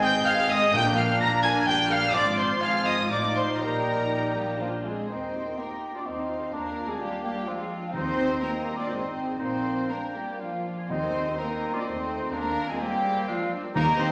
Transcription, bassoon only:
Already playing: G#3
0.73 A#3
1.67 G3
2.14 F3
3.61 G3
4.61 F3
5.10 D#4
5.58 G4
6.06 D#4
6.53 D4
7.48 C4
9.41 A#3
10.90 D#4
11.39 C4
12.34 A#3
12.81 C4
13.76 A#3

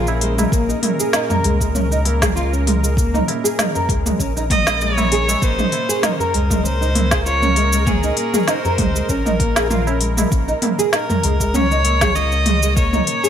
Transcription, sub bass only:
Already playing: A#1
0.52 A#1
1.44 C#2
3.89 C#2
4.19 A#1
5.42 A#1
6.34 C#2
8.79 C#2
9.09 A#1
10.32 A#1
11.24 C#2

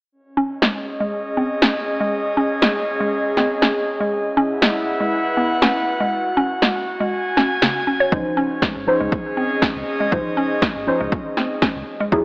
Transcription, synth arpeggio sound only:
0.37 C#4
0.62 G#3
1.00 G#3
1.37 C4
1.62 C#4
2.00 G#3
2.37 C#4
2.62 G#3
3.00 G#3
3.37 C4
3.62 C#4
4.00 G#3
4.37 C#4
4.62 G#3
5.00 G#3
5.37 B3
5.62 C#4
6.00 G#3
6.37 C#4
6.62 G#3
7.00 G#3
7.37 C#4
7.62 C#3
7.87 C#4
8.00 C#5
8.37 C#4
8.62 G#3
9.00 G#3
9.37 C4
9.62 C#4
10.00 G#3
10.37 C#4
10.62 G#3
11.01 G#3
11.37 C4
11.62 C#4
12.00 G#3

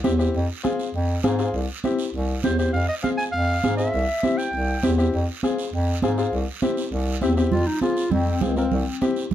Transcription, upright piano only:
0.04 C4 E4 G4
0.19 C4 E4 G4
0.63 C4 F4 G#4
1.24 C4 F4 G#4
1.39 C4 F4 G#4
1.84 C4 E4 G4
2.44 C4 E4 G4
2.58 C4 E4 G4
3.03 C4 F4 G#4
3.63 C4 F4 G#4
3.78 C4 F4 G#4
4.23 C4 E4 G4
4.83 C4 E4 G4
4.98 C4 E4 G4
5.43 C4 F4 G#4
6.03 C4 F4 G#4
6.18 C4 F4 G#4
6.62 C4 E4 G4
7.22 C4 E4 G4
7.37 C4 E4 G4
7.82 C4 F4 G#4
8.41 C4 F4 G#4
8.57 C4 F4 A#4
9.01 C4 E4 G4

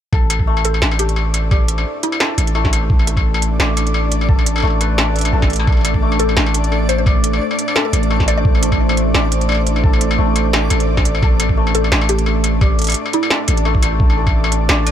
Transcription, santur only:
0.12 A4
0.47 A3
0.65 C5
0.99 A4
1.51 D5
2.21 A4
2.55 A3
2.72 C5
3.07 A4
3.59 D5
4.29 A4
4.63 A3
4.81 B4
5.15 E5
5.33 A4
5.67 A4
6.02 A3
6.20 C5
6.54 A4
7.06 D5
7.75 A4
8.10 A3
8.27 C5
8.62 A4
9.14 D5
9.83 A4
10.18 A3
10.36 C5
10.70 A4
11.22 A4
11.57 A3
11.75 C5
12.09 A4
12.61 D5
13.31 A4
13.65 A3
13.83 C5
14.17 A4
14.69 D5

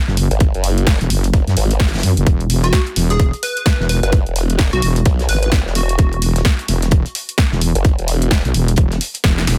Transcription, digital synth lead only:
2.64 F#4
3.11 G#4
3.43 B4
3.90 B4
4.03 B4
4.73 F#4
5.29 B4
5.43 B4
5.75 F#4

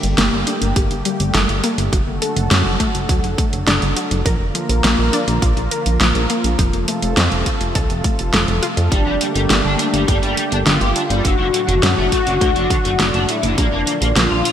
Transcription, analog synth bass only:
0.03 G1
0.18 G1
0.32 G1
0.62 G1
0.76 G1
0.91 G1
1.20 G1
1.34 G1
1.49 G1
1.78 G1
1.93 F#1
2.07 F#1
2.36 F#1
2.51 F#2
2.66 F#1
2.95 F#1
3.09 D2
3.24 F#1
3.53 F#1
3.67 F#1
3.82 F#1
4.11 F#1
4.26 A#1
4.40 F1
4.69 A#1
4.84 A#1
4.99 A#1
5.28 A#1
5.42 A#1
5.57 A#1
5.86 A#1
6.01 A#1
6.15 A#1
6.44 A#1
6.59 F1
6.73 F1
7.03 F1
7.17 F2
7.32 F1
7.61 F1
7.75 C2
7.90 F1
8.19 F1
8.34 F1
8.48 F1
8.77 F2
8.92 G1
9.06 F1
9.35 G1
9.50 G1
9.65 G1
9.94 G1
10.08 G1
10.23 G1
10.52 G1
10.66 G1
10.81 G1
11.10 G1
11.25 F#1
11.39 F#1
11.68 F#1
11.83 F#2
11.98 F#1
12.27 F#1
12.41 D2
12.56 F#1
12.85 F#1
13.00 F#1
13.14 F#1
13.43 F#1
13.58 A#1
13.72 F1
14.02 A#1
14.16 A#1
14.31 A#1

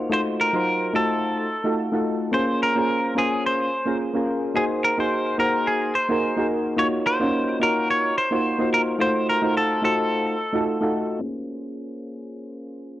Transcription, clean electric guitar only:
0.13 C5
0.41 A#4
0.96 A4
2.34 C5
2.63 A#4
3.18 G#4
3.46 C5
4.56 G#4
4.84 A#4
5.00 C5
5.40 A#4
5.67 G#4
5.95 C5
6.79 C#5
7.07 C5
7.63 A#4
7.90 C#5
8.18 C5
8.74 A#4
9.01 C5
9.30 A#4
9.57 A4
9.85 A4

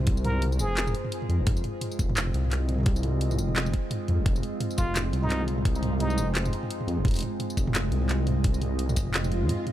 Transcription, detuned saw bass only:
Already playing: C2
0.60 F1
1.29 F2
1.40 D#1
1.47 F1
1.99 F1
2.34 C2
3.39 F1
4.09 F2
4.19 D#1
4.26 F1
4.78 F1
5.13 C2
6.18 F1
6.88 F2
6.98 D#1
7.05 F1
7.57 F1
7.92 C2
8.97 F1
9.32 F1
9.42 F2

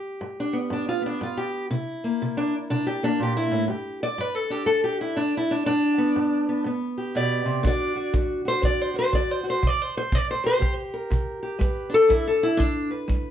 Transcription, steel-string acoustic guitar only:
Already playing: G2 G4
0.21 G2
0.40 D4
0.53 B3
0.70 G2 D4
0.89 F4
1.02 B3
1.06 D4
1.21 G2 F4
1.37 G4
1.71 C3 E4
2.04 A#3
2.22 C3
2.37 D4
2.70 C3 D4
2.87 G4
3.03 A#3 D4
3.20 A#2 G4
3.37 E4
3.51 A2
3.68 G2 G4
4.03 D5
4.18 G2 B4
4.35 A4
4.50 D4 G4
4.66 G2 A4
4.84 G4
5.01 E4
5.16 G2 D4
5.37 E4
5.51 D4
5.66 G2 D4
5.98 B3
6.16 G2
6.49 B3
6.64 G2 B3
6.98 G4
7.15 B2 D5
7.45 C3
7.63 D3 D4 F#4
7.67 D5
7.96 F#4
8.13 D3
8.45 F#4 C5
8.62 D3 D5
8.81 C5
8.94 F#4
8.99 C5
9.13 D3 D5
9.31 C5
9.43 F#4
9.50 C5
9.63 C3
9.67 D5
9.82 C5
9.97 C5
10.12 C3 D5
10.31 C5
10.44 G4 C5
10.59 C3 G4
10.94 A#4
11.10 C3
11.43 G4
11.59 G3 B4
11.90 D4
11.94 A4
12.09 G3 E4
12.28 A4
12.43 E4
12.57 G3 D4
12.91 B4
13.08 G3

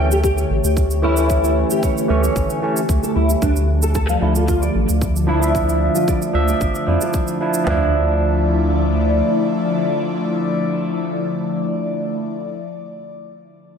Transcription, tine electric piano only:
1.02 E3 A3 C#4
1.15 E3 A3
1.19 C#4
2.08 E3 A3 C#4
2.62 E3 A3 C#4
4.21 F3 D4 E4
5.27 F3 D4 E4
5.40 F3 D4 E5
6.33 F3 D4 E5
6.86 F3 D4 E4
7.40 F3 D4 E4
7.64 F3 D4
7.70 E4

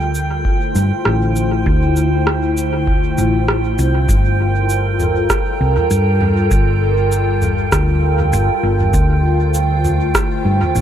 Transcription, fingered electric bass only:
Already playing: D2
0.75 G2
1.06 A1
1.66 D2
3.18 A1
3.79 C2
4.09 G1
5.61 C2
5.91 G2
6.51 G1
7.72 D2
8.33 G1
8.63 G1
8.94 D2
10.45 G2
10.75 A1

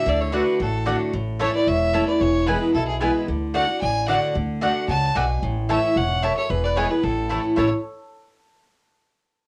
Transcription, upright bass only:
0.06 D2
0.60 A1
1.14 A1
1.67 E1
2.21 E1
2.75 B1
3.28 D2
3.82 A1
4.35 D2
4.88 C#2
5.15 B1
5.42 A1
5.96 E1
6.50 E1
7.03 A1
7.58 A1

